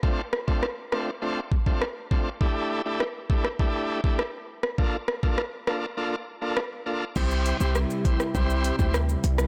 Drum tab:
CC |----------------|----------------|----------------|x---------------|
HH |----------------|----------------|----------------|--x---x---x---x-|
SH |----------------|----------------|----------------|xxxxxxxxxxxxxxxx|
SD |--r-r-r-----r---|----r--r----r--r|--r-r-r-----r---|----r--r----r--r|
BD |o--o------oo--o-|o-----o-o--o----|o--o------------|o-----o-o--o----|